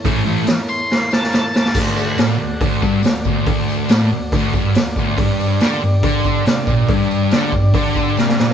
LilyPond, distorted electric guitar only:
\new Staff \with { instrumentName = "Distorted electric guitar" } { \clef bass \time 4/4 \key a \mixolydian \tempo 4 = 140 <a, e a>8 <a, e a>8 r2. | \key d \mixolydian d,4 a,8 d,8 d,8 g,8 d,8 d,8 | d,4 a,8 d,8 d,8 g,8 d,8 d,8 | g,4 d8 g,8 d4 c8 bes,8 |
g,4 d8 g,8 d4 c8 bes,8 | }